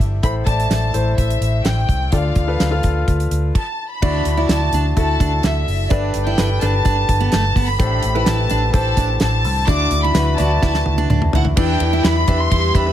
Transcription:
Already playing: grand piano G2 E4 G4 A4 C5 D5
0.00 fingered electric bass G1, kick, closed hi-hat
0.23 fingered electric bass A1, grand piano A2 E4 A4 C5, violin section B5, kick, closed hi-hat
0.46 fingered electric bass A1, grand piano E4 A4 D5, violin section A5, kick, closed hi-hat
0.60 closed hi-hat
0.70 fingered electric bass A1, snare, closed hi-hat
0.94 fingered electric bass A1, grand piano E4 A4 C5, closed hi-hat
1.18 fingered electric bass A1, violin section E5, kick, closed hi-hat
1.30 closed hi-hat
1.41 fingered electric bass A1, closed hi-hat
1.65 fingered electric bass A1, violin section G5, snare, closed hi-hat
1.89 fingered electric bass C2, kick, closed hi-hat
2.12 fingered electric bass D2, grand piano D3 F4 A4 D5, violin section F5, kick, closed hi-hat
2.35 fingered electric bass D2, kick, closed hi-hat
2.47 grand piano F4 A4 B4
2.60 fingered electric bass D2, snare, closed hi-hat
2.71 grand piano F4 A4 F5
2.83 fingered electric bass D2, kick, closed hi-hat
3.08 fingered electric bass D2, kick, closed hi-hat
3.20 closed hi-hat
3.31 fingered electric bass D2, closed hi-hat
3.55 violin section A5, kick, crash
3.91 violin section B5
4.02 fingered electric bass D2, grand piano D3 E4 F#4 D5, steel-string acoustic guitar D4, kick, crash
4.25 fingered electric bass D2, closed hi-hat
4.37 grand piano E4 F#4 D5, steel-string acoustic guitar E4
4.49 fingered electric bass D2, violin section A5, snare, closed hi-hat
4.72 fingered electric bass D2, steel-string acoustic guitar D4, closed hi-hat
4.96 fingered electric bass D2, grand piano E4 F#4 A4, steel-string acoustic guitar E4, violin section A5, kick, closed hi-hat
5.20 fingered electric bass D2, steel-string acoustic guitar D4, kick, closed hi-hat
5.43 fingered electric bass D2, violin section E5, snare, closed hi-hat
5.67 fingered electric bass F#1, open hi-hat
5.90 fingered electric bass G1, grand piano G2 G4 A4 B4, steel-string acoustic guitar D4, violin section D5, kick, closed hi-hat
6.14 fingered electric bass G1, closed hi-hat
6.26 steel-string acoustic guitar E4, violin section G5
6.37 fingered electric bass G1, grand piano G4 A4 B4, snare, closed hi-hat
6.61 fingered electric bass G1, steel-string acoustic guitar D4, grand piano G4 A4 B4, violin section A5, closed hi-hat
6.85 fingered electric bass G1, steel-string acoustic guitar D4, kick, closed hi-hat
7.08 fingered electric bass G1, kick, closed hi-hat
7.20 steel-string acoustic guitar B3
7.32 fingered electric bass G1, steel-string acoustic guitar A3, violin section A5, snare, closed hi-hat
7.56 fingered electric bass G1, steel-string acoustic guitar B3, kick, open hi-hat
7.67 violin section B5
7.79 fingered electric bass A1, grand piano A2 G4 A4 C5, steel-string acoustic guitar D4, kick, closed hi-hat
8.03 fingered electric bass A1, closed hi-hat
8.14 steel-string acoustic guitar E4, grand piano G4 A4 B4
8.26 fingered electric bass A1, violin section A5, snare, closed hi-hat
8.50 fingered electric bass A1, steel-string acoustic guitar D4, closed hi-hat
8.73 fingered electric bass A1, steel-string acoustic guitar E4, grand piano G4 A4 C5, violin section A5, kick, closed hi-hat
8.97 fingered electric bass A1, steel-string acoustic guitar D4, kick, closed hi-hat
9.20 fingered electric bass A1, violin section A5, snare, closed hi-hat
9.45 fingered electric bass C2, open hi-hat
9.67 fingered electric bass D2, grand piano D3 E4 F#4 D5, steel-string acoustic guitar D4, violin section D6, kick, closed hi-hat
9.91 fingered electric bass D2, closed hi-hat
10.03 steel-string acoustic guitar E4, violin section B5
10.14 fingered electric bass D2, grand piano E4 F#4 B4, snare, closed hi-hat
10.37 fingered electric bass D2, grand piano E4 F#4 D5, steel-string acoustic guitar F#4, violin section A5, closed hi-hat
10.62 fingered electric bass D2, steel-string acoustic guitar E4, kick, snare
10.74 snare
10.86 fingered electric bass D2, high tom
10.98 steel-string acoustic guitar D4, high tom
11.10 fingered electric bass D2, steel-string acoustic guitar D4, mid tom
11.22 mid tom
11.33 fingered electric bass D2, steel-string acoustic guitar E4, violin section F#5, floor tom
11.45 floor tom
11.56 fingered electric bass E2, grand piano E3 E4 G4 B4 E5, french horn section E3 E4, steel-string acoustic guitar D4, violin section G5, kick, crash
11.80 fingered electric bass E2, ride
11.93 steel-string acoustic guitar E4
12.04 fingered electric bass E2, violin section B5, snare, ride
12.27 fingered electric bass E2, steel-string acoustic guitar D4, grand piano E4 G4 B4 E5, kick, ride
12.40 violin section C6
12.50 fingered electric bass E2, french horn section G3 G4, steel-string acoustic guitar E4, kick, ride
12.75 fingered electric bass E2, steel-string acoustic guitar D4, grand piano E4 G4 B4 E5, violin section B5, kick, ride
12.86 grand piano E4 G4 B4 E5

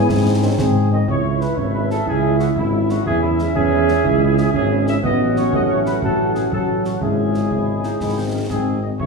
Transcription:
Already playing: euphonium B3, woodwind section E4, trumpet section G#4, piccolo G#5
0.09 tuba G#2, french horn section G#3 C4 D#4, euphonium C4, concert bass drum, snare
0.43 trombone section D#3 C4, euphonium C#4
0.58 tuba G#2, euphonium C4, trumpet section G#4, concert bass drum, snare
0.91 trombone section D#3 C4, euphonium C4, trumpet section D#5
1.08 tuba C#2, woodwind section C#4 E5, euphonium E4, trumpet section C#5, concert bass drum
1.24 french horn section G#3 C#4 E4
1.40 french horn section G#3 C#4 E4, trumpet section B4, snare
1.57 tuba G#1, euphonium C#4, trumpet section C#5, concert bass drum
1.73 french horn section G#3 C#4 E4, trumpet section B4
1.89 french horn section G#3 C#4 E4, trumpet section A4, snare
2.06 tuba C#2, euphonium E4, trumpet section G#4, concert bass drum
2.23 french horn section G#3 C#4 E4
2.39 french horn section G#3 C#4 E4, trumpet section F#4, snare
2.56 tuba G#1, trumpet section E4, concert bass drum
2.72 french horn section G#3 C#4 E4
2.88 french horn section G#3 C#4 E4, trumpet section F#4, snare
3.05 tuba E2, woodwind section C#4 E5, euphonium E4, trumpet section G#4, concert bass drum
3.21 french horn section G#3 C#4 E4, trumpet section E4
3.38 french horn section G#3 C#4 E4, snare
3.55 tuba E2, euphonium C#4, trumpet section G#4, concert bass drum
3.71 french horn section G#3 C#4 E4
3.88 french horn section G#3 C#4 E4, snare
4.04 tuba C#2, euphonium E4, concert bass drum
4.20 french horn section G#3 C#4 E4
4.37 french horn section G#3 C#4 E4, snare
4.53 tuba G#1, euphonium C#4, trumpet section G#4, concert bass drum
4.70 french horn section G#3 C#4 E4
4.87 french horn section G#3 C#4 E4, trumpet section E5, snare
5.03 tuba A1, french horn section F#3 C#4 F#4, euphonium B3, woodwind section C#4 F#5, trumpet section D#5, concert bass drum
5.36 trumpet section C#5, snare
5.53 tuba A1, euphonium A3, trumpet section D#5, concert bass drum
5.70 trumpet section C#5
5.86 trumpet section B4, snare
6.02 tuba A1, french horn section F#3 C#4 F#4, trumpet section A4, concert bass drum
6.35 trumpet section G#4, snare
6.51 tuba A1, euphonium F#3, french horn section F#3 C#4 F#4, trumpet section A4, concert bass drum
6.85 trumpet section F#4, snare
7.01 tuba G#1, french horn section G#3 C#4 E4, euphonium G#3, woodwind section C#4 E5, trumpet section G#4, concert bass drum
7.34 snare
7.50 tuba G#1, woodwind section E4, concert bass drum
7.83 woodwind section D#4, snare
8.00 tuba G#1, french horn section G#3 C4 D#4, woodwind section E4, concert bass drum, snare
8.17 woodwind section D#4
8.34 woodwind section C#4
8.49 tuba G#1, french horn section G#3 C4 D#4, woodwind section C4, trumpet section G#4, concert bass drum, snare
8.82 woodwind section A3, trumpet section D#5
8.99 tuba C#2, euphonium F#3, woodwind section C#4 E5, trumpet section C#5, concert bass drum

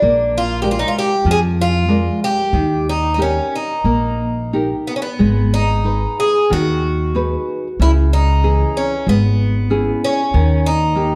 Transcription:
Already playing: bouzouki D4
0.02 upright bass A#1, nylon-string guitar A#3
0.38 bouzouki F4
0.62 nylon-string guitar G#3 A#4 D5, bouzouki G4
0.71 bouzouki F4
0.79 bouzouki D#4
0.88 bouzouki F4
0.99 bouzouki G4
1.25 upright bass F2, nylon-string guitar F3
1.31 bouzouki G#4
1.61 bouzouki F4
1.88 nylon-string guitar G#3 A#4 D5
2.24 bouzouki G4
2.53 upright bass D#2, nylon-string guitar D#3
2.89 bouzouki D#4
3.14 bouzouki D#4, nylon-string guitar D#4
3.18 bouzouki C#4, nylon-string guitar G4 A#4
3.56 bouzouki D#4
3.84 upright bass A#1, nylon-string guitar A#3
4.53 nylon-string guitar D#4 G4 A#4
4.87 bouzouki B3
4.96 bouzouki C#4
5.02 bouzouki B3
5.19 upright bass G#1, nylon-string guitar G#3
5.54 bouzouki D#4
5.84 nylon-string guitar D#4 G#4 B4
6.20 bouzouki G#4
6.50 upright bass D#2, nylon-string guitar D#3, bouzouki F#4
7.15 nylon-string guitar D#4 G#4 B4
7.80 upright bass C#2, nylon-string guitar C#3, bouzouki E4
8.13 bouzouki D#4
8.43 nylon-string guitar E3 C#4 G#4
8.77 bouzouki C#4
9.07 upright bass G#1, nylon-string guitar G#3, bouzouki B3
9.70 nylon-string guitar C#4 E4 G#4
10.04 bouzouki C#4
10.34 upright bass D#2, nylon-string guitar D#3
10.66 bouzouki D#4
10.95 nylon-string guitar A#3 D#4 G4

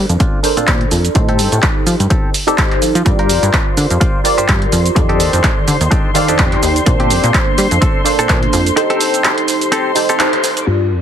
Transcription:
Already playing: analog polysynth A#3 D4 A4 C5
0.09 analog synth bass F2, closed hi-hat, shaker
0.20 clean electric guitar C4 D4 F4, kick, closed hi-hat, shaker
0.43 analog polysynth D4 A4 A#4 C5, open hi-hat, shaker
0.57 analog synth bass A#2, clean electric guitar C4 D4 F4, closed hi-hat, shaker
0.67 analog synth bass A#2, kick, clap, closed hi-hat, shaker
0.81 closed hi-hat
0.91 analog synth bass F2, muted clean electric guitar stroke, open hi-hat, shaker
1.05 closed hi-hat, shaker
1.15 analog synth bass A2, analog polysynth D#4 G4 A4 C5, muted clean electric guitar stroke, kick, closed hi-hat, shaker
1.29 clean electric guitar C4 G4 A4, closed hi-hat
1.39 analog synth bass G2, open hi-hat, shaker
1.52 analog synth bass A2, closed hi-hat, shaker
1.62 kick, clap, closed hi-hat, shaker
1.86 analog synth bass F3, open hi-hat, shaker
2.00 analog synth bass G2, closed hi-hat, shaker
2.10 clean electric guitar C4 G4 A4, kick, closed hi-hat, shaker
2.34 open hi-hat, shaker
2.47 clean electric guitar C4 G4 A4, analog polysynth D#4 G4 A4 D5, closed hi-hat, shaker
2.58 analog polysynth D#4 C5, kick, clap, closed hi-hat, shaker
2.71 clap, closed hi-hat
2.82 analog synth bass F3, muted clean electric guitar stroke, open hi-hat, shaker
2.95 analog synth bass F3, closed hi-hat, shaker
3.05 analog synth bass G2, analog polysynth F4 G4 A#4 D5, string section C5 C6, muted clean electric guitar stroke, kick, closed hi-hat, shaker
3.19 clean electric guitar F4 G4 A#4, closed hi-hat
3.29 analog synth bass F2, open hi-hat, shaker
3.43 analog synth bass G2, closed hi-hat, shaker
3.53 kick, clap, closed hi-hat, shaker
3.77 analog synth bass D3, open hi-hat, shaker
3.90 analog synth bass F2, closed hi-hat, shaker
4.00 clean electric guitar F4 G4 C5, kick, closed hi-hat, shaker
4.24 analog polysynth F4 G4 A#4 D5, open hi-hat, shaker
4.38 analog synth bass G2, clean electric guitar F4 G4 C5, closed hi-hat, shaker
4.48 analog synth bass G2, kick, clap, closed hi-hat, shaker
4.62 closed hi-hat
4.72 analog synth bass F2, muted clean electric guitar stroke, open hi-hat, shaker
4.86 closed hi-hat, shaker
4.95 analog synth bass F2, analog polysynth D#3 G4 A4 D5, muted clean electric guitar stroke, kick, closed hi-hat, shaker
5.09 clean electric guitar D4 D#4 G4 A4, closed hi-hat
5.20 analog synth bass D#2, open hi-hat, shaker
5.33 analog synth bass F2, closed hi-hat, shaker
5.43 kick, clap, closed hi-hat, shaker
5.68 analog synth bass D3, open hi-hat, shaker
5.81 analog synth bass D#2, closed hi-hat, shaker
5.91 clean electric guitar D4 D#4 G4 A4, kick, closed hi-hat, shaker
6.14 analog polysynth D#3 G4 A4 D5, clean electric guitar F5, open hi-hat, shaker
6.28 analog synth bass F2, clean electric guitar D4 D#4 G4 A4, closed hi-hat, shaker
6.38 analog synth bass F2, clean electric guitar G5, kick, clap, closed hi-hat, shaker
6.52 clap, closed hi-hat
6.63 analog synth bass D#2, muted clean electric guitar stroke, open hi-hat, shaker
6.76 closed hi-hat, shaker
6.86 analog synth bass A#2, analog polysynth A#3 D4 A4 C5, muted clean electric guitar stroke, kick, closed hi-hat, shaker
7.00 clean electric guitar C4 D4 G4, closed hi-hat
7.10 analog synth bass F2, open hi-hat, shaker
7.24 analog synth bass A#2, closed hi-hat, shaker
7.34 kick, clap, closed hi-hat, shaker
7.58 analog synth bass G3, open hi-hat, shaker
7.71 analog synth bass F2, closed hi-hat, shaker
7.81 clean electric guitar C4 D4 A4, kick, closed hi-hat, shaker
8.04 analog polysynth A#3 D4 A4 C5, open hi-hat, shaker
8.19 analog synth bass A#2, clean electric guitar C4 D4 A4, closed hi-hat, shaker
8.29 analog synth bass A#2, kick, clap, closed hi-hat, shaker
8.43 closed hi-hat
8.53 analog synth bass F2, muted clean electric guitar stroke, open hi-hat, shaker
8.66 closed hi-hat, shaker
8.76 analog polysynth D#4 G4 A4 C5, muted clean electric guitar stroke, closed hi-hat, shaker
8.90 clean electric guitar C4 G4 A4, closed hi-hat
9.01 open hi-hat, shaker
9.14 closed hi-hat, shaker
9.24 clap, closed hi-hat, shaker
9.38 closed hi-hat
9.48 open hi-hat, shaker
9.61 closed hi-hat, shaker
9.72 clean electric guitar C4 G4 A4, closed hi-hat, shaker
9.95 analog polysynth D#4 G4 A4 C5, open hi-hat, shaker
10.09 clean electric guitar C4 G4 A4, closed hi-hat, shaker
10.19 clap, closed hi-hat, shaker
10.33 clap, closed hi-hat
10.44 muted clean electric guitar stroke, open hi-hat, shaker
10.57 closed hi-hat, shaker
10.67 analog synth bass G2, analog polysynth F4 G4 A#4 D5, clean electric guitar F4 G4 A#4, string section D5 D6, crash
10.91 analog synth bass F2

